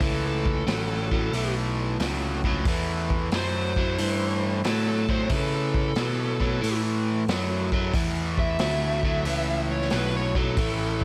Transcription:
0.00 picked electric bass C#2, overdriven electric guitar A2 E3, lead electric guitar A4, kick, open hi-hat
0.27 lead electric guitar A4
0.46 kick
0.66 picked electric bass A1, overdriven electric guitar A2 F#3, snare, open hi-hat
1.11 overdriven electric guitar A2 F#3, kick
1.32 picked electric bass B1, overdriven electric guitar A2 E3, open hi-hat
2.00 picked electric bass C#2, overdriven electric guitar A2 F#3, snare, open hi-hat
2.44 overdriven electric guitar A2 F#3, kick
2.65 picked electric bass E2, overdriven electric guitar A2 E3, kick, open hi-hat
3.10 kick
3.31 picked electric bass F#2, overdriven electric guitar A2 F#3, snare, open hi-hat
3.36 lead electric guitar C5
3.76 overdriven electric guitar A2 F#3, kick
3.98 picked electric bass G2, overdriven electric guitar A2 E3, open hi-hat
4.64 overdriven electric guitar A2 F#3, picked electric bass A2, lead electric guitar A4, snare, open hi-hat
4.88 lead electric guitar A4
5.09 overdriven electric guitar A2 F#3, lead electric guitar C5, kick
5.29 overdriven electric guitar A2 E3, picked electric bass C#3, kick, open hi-hat
5.35 lead electric guitar A4
5.55 lead electric guitar A4
5.74 kick
5.95 overdriven electric guitar A2 F#3, picked electric bass B2, snare, open hi-hat
6.40 overdriven electric guitar A2 F#3, kick
6.62 overdriven electric guitar A2 E3, picked electric bass A2, open hi-hat
7.28 picked electric bass F#2, overdriven electric guitar A2 F#3, snare, open hi-hat
7.72 overdriven electric guitar A2 F#3, kick
7.94 picked electric bass E2, overdriven electric guitar A2 E3, kick, open hi-hat
8.38 lead electric guitar E5, kick
8.59 picked electric bass D2, overdriven electric guitar A2 F#3, snare, open hi-hat
9.03 overdriven electric guitar A2 F#3, kick
9.25 picked electric bass C#2, overdriven electric guitar A2 E3, open hi-hat
9.71 lead electric guitar C#5
9.81 snare
9.90 picked electric bass B1, overdriven electric guitar A2 F#3, snare, open hi-hat
9.96 lead electric guitar B4
10.16 lead electric guitar C#5
10.35 overdriven electric guitar A2 F#3, lead electric guitar A4, kick
10.57 picked electric bass A1, overdriven electric guitar A2 E3, kick, open hi-hat

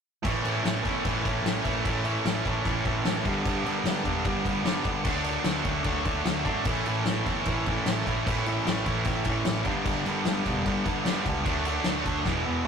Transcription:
0.23 picked electric bass A1, distorted electric guitar A2 E3 A3 C#4 E4, kick, crash
0.44 picked electric bass A1, distorted electric guitar A2 E3 A3 C#4 E4, crash
0.64 picked electric bass A1, distorted electric guitar A2 E3 A3 C#4 E4, snare, crash
0.84 picked electric bass G1, distorted electric guitar A2 E3 A3 C#4 E4, kick, crash
1.04 picked electric bass A1, distorted electric guitar A2 E3 A3 C#4 E4, kick, crash
1.25 distorted electric guitar A2 E3 A3 C#4 E4, kick, crash
1.42 picked electric bass A1, distorted electric guitar A2 E3 A3, snare, crash
1.46 distorted electric guitar C#4 E4
1.65 picked electric bass A1, distorted electric guitar A2 E3 A3 C#4 E4, kick, crash
1.85 picked electric bass A1, distorted electric guitar A2 E3 A3 C#4 E4, kick, crash
2.04 distorted electric guitar A2 E3 A3 C#4 E4, crash
2.25 picked electric bass A1, distorted electric guitar A2 E3 A3 C#4 E4, snare, crash
2.46 picked electric bass A1, distorted electric guitar A2 E3 A3 C#4 E4, kick, crash
2.65 picked electric bass A1, distorted electric guitar A2 E3 A3 C#4 E4, kick, crash
2.85 picked electric bass A1, distorted electric guitar A2 E3 A3 C#4 E4, kick, crash
3.04 picked electric bass A1, distorted electric guitar A2 E3 A3 C#4 E4, snare, crash
3.25 picked electric bass G1, distorted electric guitar G2 D3 G3 B3 D4, kick, crash
3.43 picked electric bass G1, overdriven electric guitar G2, kick, crash
3.47 distorted electric guitar G2 D3 G3 B3 D4
3.64 picked electric bass G1, distorted electric guitar G2 D3 B3, crash
3.68 distorted electric guitar G3 D4
3.84 picked electric bass G1, distorted electric guitar G2 D3, snare, crash
3.88 distorted electric guitar G3 B3 D4
4.05 picked electric bass E1, distorted electric guitar G2 D3 G3 B3 D4, kick, crash
4.25 picked electric bass G1, distorted electric guitar G2 D3 G3 B3, kick, crash
4.29 distorted electric guitar D4
4.43 overdriven electric guitar G2, kick, crash
4.47 distorted electric guitar G2 D3 G3 B3 D4
4.63 picked electric bass G1, distorted electric guitar G2 D3 G3 B3, snare, crash
4.67 distorted electric guitar D4
4.85 picked electric bass G1, distorted electric guitar G2 D3 G3 B3 D4, kick, crash
5.05 picked electric bass D2, distorted electric guitar D3 F#3 A3 D4, kick, crash
5.24 distorted electric guitar D3 F#3 A3 D4, crash
5.42 picked electric bass D2, overdriven electric guitar D3 A3 D4, snare, crash
5.47 distorted electric guitar D3 F#3 A3 D4
5.65 picked electric bass D2, distorted electric guitar D3 F#3 A3 D4, kick, crash
5.83 picked electric bass D2, distorted electric guitar D3 F#3 A3 D4, kick, crash
6.05 picked electric bass D2, distorted electric guitar D3 F#3 A3 D4, kick, crash
6.25 picked electric bass D2, distorted electric guitar D3 F#3 A3 D4, snare, crash
6.45 picked electric bass G#1, distorted electric guitar D3 F#3 A3, overdriven electric guitar D4, kick, crash
6.49 distorted electric guitar D4
6.65 picked electric bass A1, distorted electric guitar A2 E3 A3 C#4 E4, kick, crash
6.86 picked electric bass A1, distorted electric guitar A2 E3 A3 C#4, crash
6.90 distorted electric guitar E4
7.06 picked electric bass A1, distorted electric guitar A2 E3 A3 C#4 E4, snare, crash
7.26 picked electric bass G1, distorted electric guitar A2 E3 A3 C#4 E4, kick, crash
7.45 picked electric bass A1, distorted electric guitar A2 E3 A3 C#4, kick, crash
7.50 distorted electric guitar E4
7.66 distorted electric guitar A2 E3 A3 C#4, kick, crash
7.70 distorted electric guitar E4
7.86 picked electric bass A1, distorted electric guitar A2 E3 A3 C#4 E4, snare, crash
8.07 picked electric bass A1, distorted electric guitar A2 E3 A3 C#4 E4, kick, crash
8.26 picked electric bass A1, distorted electric guitar A2 E3 A3 C#4 E4, kick, crash
8.46 distorted electric guitar A2 E3 A3 C#4 E4, crash
8.65 picked electric bass A1, distorted electric guitar A2 E3 A3 C#4 E4, snare, crash
8.85 picked electric bass A1, distorted electric guitar A2 E3 A3 C#4 E4, kick, crash
9.05 picked electric bass A1, distorted electric guitar A2 E3 A3 C#4 E4, kick, crash
9.25 picked electric bass A1, distorted electric guitar A2 E3 A3 C#4 E4, kick, crash
9.45 picked electric bass A1, distorted electric guitar A2 E3 A3 C#4 E4, snare, crash
9.65 picked electric bass G1, distorted electric guitar G2 D3 G3 B3 D4, kick, crash
9.85 picked electric bass G1, distorted electric guitar G2 D3 G3 B3 D4, kick, crash
10.06 picked electric bass G1, distorted electric guitar G2 D3 G3 B3 D4, crash
10.25 picked electric bass G1, distorted electric guitar G2 D3 G3, snare, crash
10.29 distorted electric guitar B3 D4
10.46 picked electric bass E1, distorted electric guitar G2 D3 G3 B3 D4, kick, crash
10.66 picked electric bass G1, distorted electric guitar G2 D3 G3 B3 D4, kick, crash
10.85 distorted electric guitar G2 D3 G3 B3 D4, kick, crash
11.05 picked electric bass G1, distorted electric guitar G2 D3 G3 B3 D4, snare, crash
11.26 picked electric bass C#2, distorted electric guitar G2 D3 G3 B3 D4, kick, crash
11.46 picked electric bass D2, distorted electric guitar D3 F#3 A3 D4, kick, crash
11.65 distorted electric guitar D3 F#3 A3 D4, crash
11.84 picked electric bass D2, distorted electric guitar D3 F#3 A3 D4, snare, crash
12.05 picked electric bass D2, distorted electric guitar D3 F#3 A3 D4, kick, crash
12.25 picked electric bass E1, overdriven electric guitar E2 B2, distorted electric guitar E3 G#3 B3 E4, kick, snare
12.45 picked electric bass E1, overdriven electric guitar E2 B2, distorted electric guitar E3 G#3 B3 E4
12.64 distorted electric guitar E3 B3

